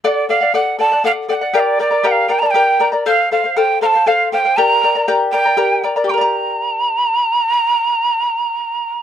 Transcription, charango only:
X:1
M:6/8
L:1/16
Q:3/8=80
K:Gm
V:1 name="Charango"
[Ad^f]2 [Adf] [df] [Adf]2 [Adf] [df] [Adf]2 [Adf] [df] | [GBdgb]2 [Bdgb] [Bdb] [GBdgb]2 [Bdgb] [Bdb] [GBdgb]2 [Bdgb] [Bdb] | [Acf]2 [Acf] [cf] [Acf]2 [Acf] [cf] [Acf]2 [Acf] [cf] | [GBdgb]2 [Bdgb] [Bdb] [GBdgb]2 [Bdgb] [Bdb] [GBdgb]2 [Bdgb] [Bdb] |
[GBdgb]12- | [GBdgb]12 |]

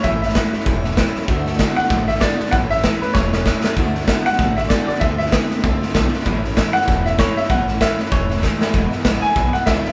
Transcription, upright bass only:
X:1
M:4/4
L:1/8
Q:"Swing" 1/4=193
K:A
V:1 name="Upright bass" clef=bass
A,,,3 z E,,,3 z | D,,3 z A,,,3 z | A,,,3 z E,,,3 z | D,,3 z A,,,3 z |
D,,3 z =C,, z B,,, z | A,,,3 z E,,,3 z | A,,,3 z E,,,3 z | E,,, z A,,, z B,,, z C,, z |]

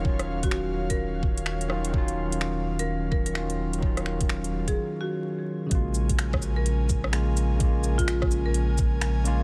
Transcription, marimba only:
X:1
M:4/4
L:1/16
Q:"Swing 16ths" 1/4=127
K:Ebm
V:1 name="Marimba"
z3 G G z2 B6 z3 | z6 z B2 z B B z4 | z6 z A2 z G6 | z6 z B2 z6 z |
z3 F F z2 B6 z3 |]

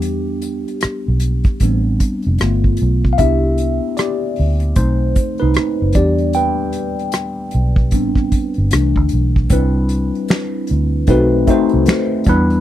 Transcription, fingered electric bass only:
X:1
M:4/4
L:1/16
Q:"Swing 16ths" 1/4=76
K:C
V:1 name="Fingered electric bass" clef=bass
E,,3 z2 B,,,2 z A,,,2 z F,,, G,,,2 B,,,2 | C,,3 z3 D,,2 B,,,2 z C,, z ^F,,, E,,2- | E,,3 z3 B,,,2 A,,,2 z G,,, C,, D,, B,,,2 | C,,3 z3 D,,2 B,,,2 z C,, z2 E,,2 |]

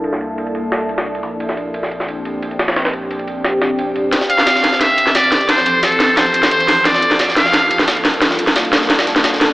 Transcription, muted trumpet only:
X:1
M:4/4
L:1/8
Q:1/4=176
K:F
V:1 name="Muted trumpet"
z8 | z8 | z8 | z f3 e2 d2 |
c2 A2 c2 c2 | d2 z f3 z2 | z8 |]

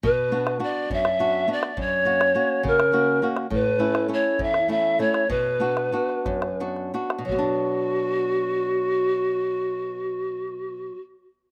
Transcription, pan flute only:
X:1
M:6/8
L:1/8
Q:3/8=65
K:Bm
V:1 name="Pan flute"
B2 d e2 d | c3 ^A2 z | B2 c e e c | B4 z2 |
F6- | F6 |]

